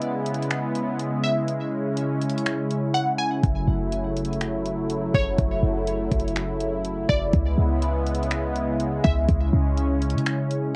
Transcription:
Already playing: C#3 G#3 B3 E4
0.02 closed hi-hat
0.26 closed hi-hat
0.34 closed hi-hat
0.42 closed hi-hat
0.51 finger snap, closed hi-hat
0.75 closed hi-hat
0.99 closed hi-hat
1.23 E5
1.48 C#4, closed hi-hat
1.97 closed hi-hat
2.21 closed hi-hat
2.29 closed hi-hat
2.38 closed hi-hat
2.46 finger snap, closed hi-hat
2.71 closed hi-hat
2.94 F#5, closed hi-hat
3.18 G#5
3.43 F#1 F#3 A3, kick, closed hi-hat
3.68 F#1
3.92 closed hi-hat
4.17 closed hi-hat
4.25 closed hi-hat
4.33 closed hi-hat
4.41 finger snap, closed hi-hat
4.66 closed hi-hat
4.90 closed hi-hat
5.14 F#1 C#5, kick
5.38 F#1, kick, closed hi-hat
5.63 F#1
5.87 closed hi-hat
6.12 F#1, kick, closed hi-hat
6.20 closed hi-hat
6.28 closed hi-hat
6.36 finger snap, closed hi-hat
6.61 closed hi-hat
6.85 closed hi-hat
7.09 F#1 D5, kick
7.33 C#2 C#3 G#3 B3, kick, closed hi-hat
7.58 C#2
7.82 closed hi-hat
8.07 closed hi-hat
8.15 closed hi-hat
8.23 closed hi-hat
8.31 finger snap, closed hi-hat
8.56 closed hi-hat
8.80 closed hi-hat
9.04 C#2 E5, kick
9.28 C#2 C#4, kick, closed hi-hat
9.53 C#2
9.77 closed hi-hat
10.02 closed hi-hat
10.10 closed hi-hat
10.14 C#3
10.18 closed hi-hat
10.26 finger snap, closed hi-hat
10.51 closed hi-hat

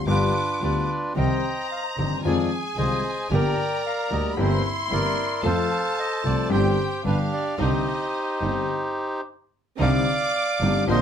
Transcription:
0.04 G1 G2 D3 G3 B3 F4 G4 D6
0.09 D4 F4 B4
0.60 D2 D3 G3 B3 F4 G4 B4 D5
1.14 C2 C3 D#3 G3 C4 D#4 G4 C5 D#5 G5 A#5
1.71 F5
1.96 G1 G2 D#3 G3 C4 D#4 G4 D#5
2.23 F2 D#3 F3 G#3 C4 D#4 F4 G#4 D5 G#5
2.76 C2 C3 D#3 G#3 C4 D#4 F4 G#4 C5 D#5
3.30 G1 G2 D3 G3 A#3 D4 G4 A#4 G5 A#5
3.34 A#4 D5
3.86 F5
4.11 D2 D3 G3 A#3 D4 G4 A#4 D#5
4.32 B5
4.37 G1 G2 E3 A#3 C4 E4 G4 A#4 C5 C6
4.90 G1 G2 E3 A#3 C4 E4 G4 A#4 D5
5.43 F2 F3 A3 C4 F4 A4 C5 F5 A5
5.99 D#5
6.23 C2 C3 F3 A3 C4 F4 A4 D5
6.49 G1 G2 D3 G3 C4 D4 G4 C5 G5
7.04 G1 G2 D3 G3 B3 D4 G4 B4 F5
7.33 D5
7.58 C2 C3 D3 G3 C4 D4 D#4 G4 C5 D#5
8.40 G1 G2 D3 G3 C4 D4 D#4
9.79 C2 C3 D3 G3 C4 D4 D#4 D5 F5 D6
10.60 G1 G2 D3 G3 C4 D4 D#4
10.86 A#1 A#2 D3 A#3 C4 D4 F4 C5 C6
10.91 D#5

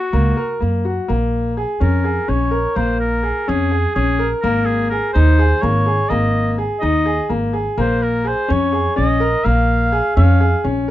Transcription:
Already playing: F#4
0.13 C#2 A#3
0.37 A#4
0.60 F#2 A#3
0.85 F#4
1.08 A#1 A#3
1.57 G#4
1.80 F2 C#4 A#4
2.04 G#4
2.28 A#1 C#4 C#5
2.51 A#4
2.76 A#1 A#3 C5
3.00 A#4
3.23 G#4
3.48 F2 C#4 G#4
3.71 G#4
3.95 A#1 C#4 G#4
4.19 A#4
4.41 G#1 A#3 A#4
4.66 G#4
4.90 G#4 A#4
5.13 D#2 D#4 C5
5.39 G#4
5.61 G#1 A#3 C#5
5.86 G#4
6.09 G#1 A#3 D#5
6.58 G#4
6.80 D#2 D#4 D#5
7.06 G#4
7.29 G#1 A#3
7.53 G#4
7.78 A#1 A#3 C5
8.03 A#4
8.24 G#4 C5
8.48 F2 C#4 C#5
8.72 G#4
8.96 A#1 C#4 D#5
9.20 A#4
9.45 A#1 A#3 F5
9.92 G#4
10.16 F2 C#4 F5
10.40 G#4
10.64 A#1 C#4

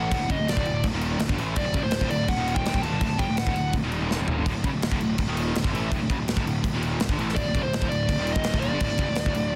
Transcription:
Already playing: A2 E3 A3 F#5
0.10 D1 D2 A2, kick, crash
0.19 D1 D2 A2
0.30 F#1 F#2 C#3 D#5, kick, crash
0.37 D1 D2 A2
0.48 D5, snare, crash
0.57 D1 D2 A2, kick
0.65 D1 D2 A2, crash
0.84 D1 D2 A2, kick, crash
0.93 D#1 D#2 A#2 D#3
1.01 crash
1.19 D1 D2 A2, snare, crash
1.29 G1 G2 D3, kick
1.37 A1 A2 E3 A3, crash
1.56 D1 D2 A2 D5, kick, crash
1.63 D1 D2 A2
1.74 F#1 F#2 C#3, kick, crash
1.81 D1 D2 A2 C5
1.91 snare, crash
2.01 D1 D2 A2, kick
2.09 D1 D2 A2 D5, crash
2.28 D1 D2 A2 F#5, kick, crash
2.36 D#1 D#2 A#2 D#3
2.48 crash
2.55 D#1 D#2 A#2 D#3 G5, kick
2.66 snare, crash
2.74 D1 D2 A2, kick
2.82 D#1 D#2 A#2 A5, crash
2.92 G1 G2 D3
3.01 D1 D2 A2, kick, crash
3.10 D1 D2 A2
3.18 F#1 F#2 C#3 G5, kick, crash
3.29 D1 D2 A2
3.37 F#5, snare, crash
3.47 D1 D2 A2, kick
3.56 D1 D2 A2, crash
3.73 D1 D2 A2, kick, crash
3.83 D#1 D#2 A#2 D#3
3.92 crash
4.01 D#1 D#2 A#2 D#3
4.11 snare
4.19 D1 D2 A2
4.28 D#1 D#2 A#2, floor tom
4.37 G1 G2 D3
4.45 D1 D2 A2, kick, crash
4.54 D1 D2 A2
4.63 F#1 F#2 C#3, kick, crash
4.72 D1 D2 A2
4.82 snare, crash
4.91 D1 D2 A2, kick
4.99 D1 D2 A2, crash
5.18 D1 D2 A2, kick, crash
5.27 D#1 D#2 A#2 D#3
5.37 crash
5.53 D1 D2 A2, snare, crash
5.62 G1 G2 D3, kick
5.73 A1 A2 E3 A3, crash
5.90 D1 D2 A2, kick, crash
6.00 D1 D2 A2
6.09 F#1 F#2 C#3, kick, crash
6.18 D1 D2 A2
6.28 snare, crash
6.36 D1 D2 A2, kick
6.44 D1 D2 A2, crash
6.63 D1 D2 A2, kick, crash
6.72 D#1 D#2 A#2 D#3
6.83 crash
6.99 D1 D2 A2, snare, crash
7.09 G1 G2 D3, kick
7.17 A1 A2 E3 A3, crash
7.29 snare
7.35 D1 D2 A2 D5, kick, crash
7.44 D1 D2 A2
7.54 F#1 F#2 C#3, kick, crash
7.63 D1 D2 A2 C5
7.73 snare, crash
7.81 D1 D2 A2, kick
7.89 D1 D2 A2 D5, crash
8.09 D1 D2 A2, kick, crash
8.18 D#1 D#2 A#2 D#3
8.27 crash
8.33 D#1 D#2 A#2 D#5, kick
8.37 D#3
8.44 snare, crash
8.54 D1 D2 A2, kick
8.60 D#1 D#2 A#2 D5, crash
8.72 G1 G2 D3
8.80 D1 D2 A2, kick, crash
8.90 D1 D2 A2
8.98 F#1 F#2 C#3, kick, crash
9.08 D1 D2 A2
9.15 snare, crash
9.26 D1 D2 A2, kick
9.35 D1 D2 A2, crash
9.52 A2

